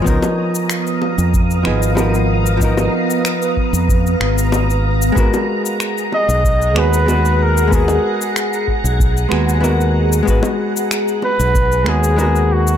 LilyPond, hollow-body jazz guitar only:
\new Staff \with { instrumentName = "Hollow-body jazz guitar" } { \time 4/4 \key gis \dorian \tempo 4 = 94 <eis b dis' ais'>2~ <eis b dis' ais'>8 <eis b dis' gis'>8 <eis b dis' ais'>4 | <eis b dis' ais'>2~ <eis b dis' ais'>8 r4. | <gis b fis' ais'>2~ <gis b fis' ais'>8 <gis b fis' gis'>8 <gis b fis' b'>4 | <gis b fis' ais'>2~ <gis b fis' ais'>8 <gis b fis' gis'>8 <gis b fis' ais'>4 |
<gis b fis' b'>2~ <gis b fis' b'>8 <gis b fis' gis'>8 <gis b fis' ais'>4 | }